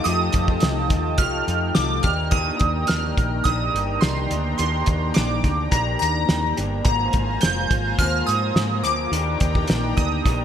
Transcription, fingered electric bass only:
0.06 0.28 F2 loud
0.34 0.57 F2 medium
0.62 0.91 C2 loud
0.91 1.18 D#2 loud
1.18 1.41 C2 medium
1.48 1.70 F2 medium
1.77 1.99 C2 medium
2.04 2.50 D#2 medium
2.61 2.83 D#2 medium
2.90 3.12 D#2 medium
3.18 3.40 A#1 medium
3.45 3.68 A#1 medium
3.74 3.97 G1 medium
4.03 4.25 C2 medium
4.31 4.53 D2 medium
4.59 4.82 D#2 loud
4.88 5.10 D#2 loud
5.17 5.39 A#1 medium
5.44 5.67 D2 medium
5.72 5.95 A#1 medium
6.02 6.24 D#2 medium
6.29 6.52 D#2 medium
6.58 6.81 G1 medium
6.85 7.08 G#1 loud
7.14 7.37 G#1 loud
7.43 7.66 F1 loud
7.71 7.94 G#1 medium
7.99 8.22 D#2 loud
8.28 8.51 G#2 medium
8.55 8.83 G#2 loud
8.83 9.06 D2 medium
9.12 9.35 D#2 loud
9.41 9.64 D#2 loud
9.69 9.92 A#1 medium
9.98 10.20 D2 medium
10.26 10.45 A#1 medium

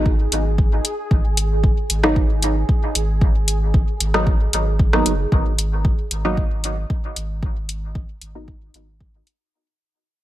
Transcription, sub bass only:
0.00 0.27 G#1 medium
0.32 0.80 G#1 loud
1.11 1.72 G#1 loud
1.90 2.64 G#1 medium
2.95 3.83 G#1 medium
4.00 4.48 G#1 medium
4.53 4.93 G#1 medium
4.93 5.03 G#1 medium
5.06 5.26 F#1 medium
5.32 5.93 G#1 medium
6.11 6.85 G#1 medium
7.16 8.04 G#1 medium
8.22 8.69 G#1 medium
8.74 9.22 G#1 medium

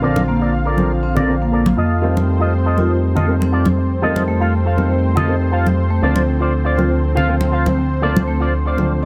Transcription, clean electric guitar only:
0.02 0.22 A4 loud
0.02 0.22 A#4 medium
0.02 0.22 D5 loud
0.40 0.52 A4 medium
0.40 0.53 A#4 medium
0.40 0.53 D5 medium
0.65 0.91 A4 medium
0.65 0.91 A#4 medium
0.65 0.91 D5 medium
1.15 1.34 A4 loud
1.15 1.34 A#4 medium
1.15 1.35 D5 loud
1.52 1.66 A4 medium
1.52 1.66 A#4 medium
1.52 1.67 D5 medium
1.77 2.27 F4 medium
1.77 2.28 A4 medium
1.77 2.28 D#5 medium
2.40 2.52 F4 medium
2.40 2.53 A4 medium
2.40 2.53 D#5 medium
2.65 2.91 F4 medium
2.65 2.91 A4 medium
2.65 2.91 D#5 medium
3.15 3.34 F4 loud
3.15 3.34 A4 medium
3.15 3.35 D#5 loud
3.52 3.66 F4 medium
3.52 3.66 A4 medium
3.52 3.66 D5 medium
3.77 muted clean electric guitar stroke soft
4.02 4.22 F4 loud
4.02 4.22 A4 medium
4.02 4.22 D#5 loud
4.40 4.52 F4 medium
4.40 4.53 A4 medium
4.40 4.53 F5 medium
4.65 4.91 F4 medium
4.65 4.91 A4 medium
4.65 4.92 F5 medium
5.15 5.34 F4 medium
5.15 5.34 A4 medium
5.15 5.35 D#5 loud
5.52 5.66 F4 medium
5.52 5.66 A4 medium
5.52 5.66 F5 medium
5.77 muted clean electric guitar stroke soft
6.02 6.22 F4 medium
6.02 6.22 C5 medium
6.02 6.22 D5 loud
6.40 6.52 F4 medium
6.40 6.53 C5 medium
6.40 6.53 D5 medium
6.64 6.90 F4 medium
6.64 6.91 C5 medium
6.64 6.91 D5 medium
7.15 7.34 F4 loud
7.15 7.34 C5 medium
7.15 7.35 F5 loud
7.52 7.66 F4 medium
7.52 7.66 C5 medium
7.52 7.66 F5 medium
7.77 muted clean electric guitar stroke soft
8.02 8.21 F4 loud
8.02 8.22 C5 medium
8.02 8.22 D5 loud
8.40 8.52 F4 medium
8.40 8.53 C5 medium
8.40 8.53 D5 medium
8.66 8.91 F4 medium
8.66 8.77 C5 medium
8.66 8.92 D5 medium
8.78 9.01 C5 medium

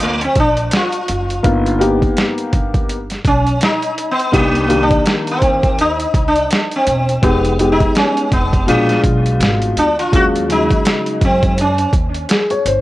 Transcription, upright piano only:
0.00 0.11 F4 medium
1.43 1.74 A#3 medium
1.43 1.74 B3 medium
1.43 1.74 D#4 medium
1.43 1.75 F4 medium
1.79 2.95 A#3 medium
1.79 2.95 B3 medium
1.79 2.95 D#4 medium
1.79 2.96 G4 medium
4.32 4.63 A#3 medium
4.32 4.63 D4 medium
4.32 4.63 D#4 medium
4.32 4.64 G4 medium
4.68 5.85 D#3 medium
4.68 5.84 A#3 medium
4.68 5.84 D4 medium
4.68 5.85 G4 medium
7.22 7.53 G#3 medium
7.22 7.53 B3 medium
7.22 7.53 D#4 medium
7.22 7.53 G4 medium
7.58 8.65 G#3 medium
7.58 8.68 B3 medium
7.58 8.68 D#4 medium
7.58 8.68 G4 medium
8.67 9.84 B2 medium
8.67 9.84 G#3 medium
8.67 9.85 D4 medium
8.67 9.85 F4 medium
10.12 10.42 F#3 medium
10.12 10.42 G#3 medium
10.12 10.42 C#4 medium
10.12 10.42 F4 medium
10.48 11.64 C#3 medium
10.48 10.56 F3 medium
10.48 11.63 G#3 medium
10.48 11.64 G#4 medium
10.54 11.66 F#3 medium
12.30 12.50 G#4 medium
12.51 12.65 C#5 medium
12.67 12.81 C5 medium

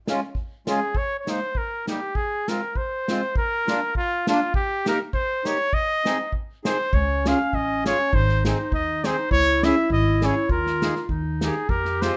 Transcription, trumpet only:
0.69 0.99 G#4 medium
0.97 1.19 C#5 medium
1.20 1.32 C#5 medium
1.30 1.59 C5 medium
1.57 1.88 A#4 medium
1.89 2.17 G4 medium
2.16 2.50 G#4 loud
2.49 2.78 A#4 medium
2.77 3.37 C5 loud
3.38 3.92 A#4 loud
3.97 4.26 F4 medium
4.29 4.53 F4 medium
4.55 4.85 G4 medium
4.88 5.00 A#4 medium
5.14 5.48 C5 medium
5.47 5.75 C#5 loud
5.74 6.33 D#5 loud
6.66 6.95 C5 medium
6.94 7.30 C#5 loud
7.28 7.56 F5 medium
7.55 7.86 D#5 loud
7.87 8.16 C#5 loud
8.15 8.45 C5 loud
8.46 8.71 C5 medium
8.74 9.07 D#5 medium
9.05 9.31 C5 medium
9.32 9.66 C#5 loud
9.64 9.91 E5 loud
9.93 10.27 D#5 medium
10.25 10.51 C#5 medium
10.52 11.07 A#4 medium
11.44 11.71 G#4 medium
11.69 12.03 A#4 loud
12.02 12.17 C5 medium

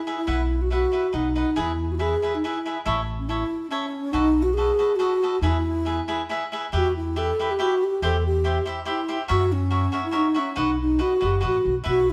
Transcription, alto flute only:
0.00 0.17 E4 medium
0.18 0.63 E4 medium
0.62 0.71 F#4 medium
0.72 1.16 F#4 medium
1.15 1.61 D#4 medium
1.60 1.93 E4 medium
1.92 1.98 E4 medium
1.92 1.96 F#4 medium
1.97 2.03 F#4 medium
2.01 2.36 G#4 medium
2.35 2.46 D#4 medium
2.45 2.77 E4 medium
3.19 3.30 C#4 medium
3.29 3.69 E4 medium
3.70 4.14 C#4 medium
4.12 4.44 D#4 loud
4.43 4.55 F#4 medium
4.54 4.97 G#4 medium
4.96 5.41 F#4 medium
5.41 6.25 E4 medium
6.76 6.95 F#4 medium
6.96 7.19 E4 medium
7.18 7.52 A4 medium
7.51 7.63 G4 medium
7.61 7.85 F#4 medium
7.84 8.03 G4 medium
8.04 8.24 A4 medium
8.27 8.65 G4 medium
8.89 9.18 E4 medium
9.30 9.54 F#4 medium
9.52 10.04 C#4 medium
10.05 10.17 E4 medium
10.16 10.40 D#4 medium
10.39 10.59 C#4 medium
10.58 10.80 D#4 medium
10.81 11.03 D#4 medium
11.01 11.27 F#4 medium
11.25 11.44 G4 medium
11.46 11.75 F#4 medium
11.89 12.11 F#4 medium
12.10 12.13 E4 medium

